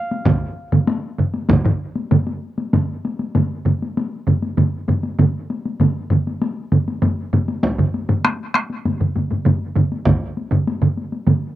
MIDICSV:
0, 0, Header, 1, 3, 480
1, 0, Start_track
1, 0, Tempo, 615385
1, 203, Time_signature, 4, 2, 24, 8
1, 4522, Tempo, 607903
1, 9067, End_track
2, 0, Start_track
2, 0, Title_t, "Harp"
2, 0, Program_c, 0, 46
2, 0, Note_on_c, 0, 77, 67
2, 1032, Note_off_c, 0, 77, 0
2, 9067, End_track
3, 0, Start_track
3, 0, Title_t, "Taiko and cinematic ensemble drums"
3, 89, Note_on_c, 9, 48, 64
3, 167, Note_off_c, 9, 48, 0
3, 197, Note_on_c, 9, 45, 96
3, 199, Note_on_c, 9, 41, 113
3, 202, Note_on_c, 9, 48, 82
3, 204, Note_on_c, 9, 47, 107
3, 275, Note_off_c, 9, 45, 0
3, 277, Note_off_c, 9, 41, 0
3, 280, Note_off_c, 9, 48, 0
3, 282, Note_off_c, 9, 47, 0
3, 564, Note_on_c, 9, 45, 96
3, 566, Note_on_c, 9, 47, 105
3, 567, Note_on_c, 9, 48, 61
3, 642, Note_off_c, 9, 45, 0
3, 644, Note_off_c, 9, 47, 0
3, 645, Note_off_c, 9, 48, 0
3, 682, Note_on_c, 9, 48, 88
3, 760, Note_off_c, 9, 48, 0
3, 923, Note_on_c, 9, 47, 93
3, 930, Note_on_c, 9, 45, 94
3, 1001, Note_off_c, 9, 47, 0
3, 1008, Note_off_c, 9, 45, 0
3, 1042, Note_on_c, 9, 48, 60
3, 1120, Note_off_c, 9, 48, 0
3, 1160, Note_on_c, 9, 48, 80
3, 1163, Note_on_c, 9, 47, 108
3, 1166, Note_on_c, 9, 41, 108
3, 1168, Note_on_c, 9, 45, 95
3, 1238, Note_off_c, 9, 48, 0
3, 1241, Note_off_c, 9, 47, 0
3, 1244, Note_off_c, 9, 41, 0
3, 1246, Note_off_c, 9, 45, 0
3, 1284, Note_on_c, 9, 47, 109
3, 1291, Note_on_c, 9, 45, 119
3, 1362, Note_off_c, 9, 47, 0
3, 1369, Note_off_c, 9, 45, 0
3, 1525, Note_on_c, 9, 48, 63
3, 1603, Note_off_c, 9, 48, 0
3, 1646, Note_on_c, 9, 48, 69
3, 1647, Note_on_c, 9, 47, 112
3, 1648, Note_on_c, 9, 45, 106
3, 1724, Note_off_c, 9, 48, 0
3, 1725, Note_off_c, 9, 47, 0
3, 1726, Note_off_c, 9, 45, 0
3, 1768, Note_on_c, 9, 48, 59
3, 1846, Note_off_c, 9, 48, 0
3, 2010, Note_on_c, 9, 48, 60
3, 2088, Note_off_c, 9, 48, 0
3, 2130, Note_on_c, 9, 47, 97
3, 2131, Note_on_c, 9, 48, 78
3, 2134, Note_on_c, 9, 45, 99
3, 2208, Note_off_c, 9, 47, 0
3, 2209, Note_off_c, 9, 48, 0
3, 2212, Note_off_c, 9, 45, 0
3, 2377, Note_on_c, 9, 48, 62
3, 2455, Note_off_c, 9, 48, 0
3, 2490, Note_on_c, 9, 48, 58
3, 2568, Note_off_c, 9, 48, 0
3, 2612, Note_on_c, 9, 48, 79
3, 2613, Note_on_c, 9, 47, 90
3, 2615, Note_on_c, 9, 45, 90
3, 2690, Note_off_c, 9, 48, 0
3, 2691, Note_off_c, 9, 47, 0
3, 2693, Note_off_c, 9, 45, 0
3, 2848, Note_on_c, 9, 47, 90
3, 2853, Note_on_c, 9, 45, 97
3, 2860, Note_on_c, 9, 48, 55
3, 2926, Note_off_c, 9, 47, 0
3, 2931, Note_off_c, 9, 45, 0
3, 2938, Note_off_c, 9, 48, 0
3, 2982, Note_on_c, 9, 48, 56
3, 3060, Note_off_c, 9, 48, 0
3, 3098, Note_on_c, 9, 48, 71
3, 3176, Note_off_c, 9, 48, 0
3, 3329, Note_on_c, 9, 47, 92
3, 3334, Note_on_c, 9, 45, 101
3, 3337, Note_on_c, 9, 48, 53
3, 3407, Note_off_c, 9, 47, 0
3, 3412, Note_off_c, 9, 45, 0
3, 3415, Note_off_c, 9, 48, 0
3, 3451, Note_on_c, 9, 48, 55
3, 3529, Note_off_c, 9, 48, 0
3, 3568, Note_on_c, 9, 47, 98
3, 3569, Note_on_c, 9, 48, 64
3, 3572, Note_on_c, 9, 45, 97
3, 3646, Note_off_c, 9, 47, 0
3, 3647, Note_off_c, 9, 48, 0
3, 3650, Note_off_c, 9, 45, 0
3, 3806, Note_on_c, 9, 48, 60
3, 3808, Note_on_c, 9, 47, 88
3, 3815, Note_on_c, 9, 45, 93
3, 3884, Note_off_c, 9, 48, 0
3, 3886, Note_off_c, 9, 47, 0
3, 3893, Note_off_c, 9, 45, 0
3, 3925, Note_on_c, 9, 48, 58
3, 4003, Note_off_c, 9, 48, 0
3, 4045, Note_on_c, 9, 47, 108
3, 4050, Note_on_c, 9, 45, 103
3, 4051, Note_on_c, 9, 48, 71
3, 4123, Note_off_c, 9, 47, 0
3, 4128, Note_off_c, 9, 45, 0
3, 4129, Note_off_c, 9, 48, 0
3, 4290, Note_on_c, 9, 48, 58
3, 4368, Note_off_c, 9, 48, 0
3, 4411, Note_on_c, 9, 48, 51
3, 4489, Note_off_c, 9, 48, 0
3, 4522, Note_on_c, 9, 45, 87
3, 4530, Note_on_c, 9, 47, 90
3, 4531, Note_on_c, 9, 48, 76
3, 4601, Note_off_c, 9, 45, 0
3, 4609, Note_off_c, 9, 47, 0
3, 4610, Note_off_c, 9, 48, 0
3, 4763, Note_on_c, 9, 45, 100
3, 4772, Note_on_c, 9, 48, 49
3, 4776, Note_on_c, 9, 47, 84
3, 4842, Note_off_c, 9, 45, 0
3, 4851, Note_off_c, 9, 48, 0
3, 4855, Note_off_c, 9, 47, 0
3, 4896, Note_on_c, 9, 48, 52
3, 4975, Note_off_c, 9, 48, 0
3, 5010, Note_on_c, 9, 48, 71
3, 5089, Note_off_c, 9, 48, 0
3, 5250, Note_on_c, 9, 45, 98
3, 5251, Note_on_c, 9, 47, 88
3, 5251, Note_on_c, 9, 48, 53
3, 5329, Note_off_c, 9, 45, 0
3, 5330, Note_off_c, 9, 47, 0
3, 5330, Note_off_c, 9, 48, 0
3, 5375, Note_on_c, 9, 48, 58
3, 5454, Note_off_c, 9, 48, 0
3, 5488, Note_on_c, 9, 45, 104
3, 5489, Note_on_c, 9, 47, 102
3, 5496, Note_on_c, 9, 48, 69
3, 5567, Note_off_c, 9, 45, 0
3, 5568, Note_off_c, 9, 47, 0
3, 5575, Note_off_c, 9, 48, 0
3, 5731, Note_on_c, 9, 47, 96
3, 5733, Note_on_c, 9, 45, 101
3, 5736, Note_on_c, 9, 48, 59
3, 5810, Note_off_c, 9, 47, 0
3, 5811, Note_off_c, 9, 45, 0
3, 5815, Note_off_c, 9, 48, 0
3, 5852, Note_on_c, 9, 48, 59
3, 5931, Note_off_c, 9, 48, 0
3, 5969, Note_on_c, 9, 48, 75
3, 5972, Note_on_c, 9, 41, 104
3, 6048, Note_off_c, 9, 48, 0
3, 6050, Note_off_c, 9, 41, 0
3, 6091, Note_on_c, 9, 47, 99
3, 6097, Note_on_c, 9, 45, 89
3, 6170, Note_off_c, 9, 47, 0
3, 6176, Note_off_c, 9, 45, 0
3, 6215, Note_on_c, 9, 48, 59
3, 6294, Note_off_c, 9, 48, 0
3, 6331, Note_on_c, 9, 47, 104
3, 6331, Note_on_c, 9, 48, 55
3, 6333, Note_on_c, 9, 45, 100
3, 6410, Note_off_c, 9, 47, 0
3, 6410, Note_off_c, 9, 48, 0
3, 6412, Note_off_c, 9, 45, 0
3, 6455, Note_on_c, 9, 37, 64
3, 6455, Note_on_c, 9, 48, 74
3, 6456, Note_off_c, 9, 37, 0
3, 6456, Note_on_c, 9, 37, 67
3, 6534, Note_off_c, 9, 48, 0
3, 6535, Note_off_c, 9, 37, 0
3, 6689, Note_on_c, 9, 37, 66
3, 6691, Note_on_c, 9, 48, 54
3, 6698, Note_off_c, 9, 37, 0
3, 6698, Note_on_c, 9, 37, 68
3, 6770, Note_off_c, 9, 48, 0
3, 6777, Note_off_c, 9, 37, 0
3, 6812, Note_on_c, 9, 48, 47
3, 6891, Note_off_c, 9, 48, 0
3, 6935, Note_on_c, 9, 45, 60
3, 6935, Note_on_c, 9, 47, 71
3, 6936, Note_on_c, 9, 48, 71
3, 7014, Note_off_c, 9, 45, 0
3, 7014, Note_off_c, 9, 47, 0
3, 7015, Note_off_c, 9, 48, 0
3, 7052, Note_on_c, 9, 47, 68
3, 7057, Note_on_c, 9, 45, 80
3, 7131, Note_off_c, 9, 47, 0
3, 7136, Note_off_c, 9, 45, 0
3, 7175, Note_on_c, 9, 47, 75
3, 7177, Note_on_c, 9, 48, 54
3, 7179, Note_on_c, 9, 45, 61
3, 7254, Note_off_c, 9, 47, 0
3, 7256, Note_off_c, 9, 48, 0
3, 7258, Note_off_c, 9, 45, 0
3, 7292, Note_on_c, 9, 47, 73
3, 7296, Note_on_c, 9, 48, 46
3, 7301, Note_on_c, 9, 45, 68
3, 7371, Note_off_c, 9, 47, 0
3, 7375, Note_off_c, 9, 48, 0
3, 7380, Note_off_c, 9, 45, 0
3, 7408, Note_on_c, 9, 47, 103
3, 7416, Note_on_c, 9, 45, 108
3, 7417, Note_on_c, 9, 48, 58
3, 7487, Note_off_c, 9, 47, 0
3, 7494, Note_off_c, 9, 45, 0
3, 7496, Note_off_c, 9, 48, 0
3, 7647, Note_on_c, 9, 47, 99
3, 7654, Note_on_c, 9, 45, 103
3, 7654, Note_on_c, 9, 48, 51
3, 7726, Note_off_c, 9, 47, 0
3, 7733, Note_off_c, 9, 45, 0
3, 7733, Note_off_c, 9, 48, 0
3, 7775, Note_on_c, 9, 48, 49
3, 7854, Note_off_c, 9, 48, 0
3, 7886, Note_on_c, 9, 41, 109
3, 7889, Note_on_c, 9, 47, 103
3, 7893, Note_on_c, 9, 45, 103
3, 7895, Note_on_c, 9, 48, 64
3, 7964, Note_off_c, 9, 41, 0
3, 7968, Note_off_c, 9, 47, 0
3, 7972, Note_off_c, 9, 45, 0
3, 7974, Note_off_c, 9, 48, 0
3, 8133, Note_on_c, 9, 48, 50
3, 8212, Note_off_c, 9, 48, 0
3, 8245, Note_on_c, 9, 47, 110
3, 8250, Note_on_c, 9, 45, 100
3, 8254, Note_on_c, 9, 48, 49
3, 8324, Note_off_c, 9, 47, 0
3, 8329, Note_off_c, 9, 45, 0
3, 8333, Note_off_c, 9, 48, 0
3, 8373, Note_on_c, 9, 48, 68
3, 8452, Note_off_c, 9, 48, 0
3, 8485, Note_on_c, 9, 47, 99
3, 8486, Note_on_c, 9, 45, 91
3, 8564, Note_off_c, 9, 45, 0
3, 8564, Note_off_c, 9, 47, 0
3, 8609, Note_on_c, 9, 48, 44
3, 8688, Note_off_c, 9, 48, 0
3, 8727, Note_on_c, 9, 48, 49
3, 8806, Note_off_c, 9, 48, 0
3, 8840, Note_on_c, 9, 47, 98
3, 8844, Note_on_c, 9, 45, 93
3, 8845, Note_on_c, 9, 48, 64
3, 8919, Note_off_c, 9, 47, 0
3, 8923, Note_off_c, 9, 45, 0
3, 8924, Note_off_c, 9, 48, 0
3, 9067, End_track
0, 0, End_of_file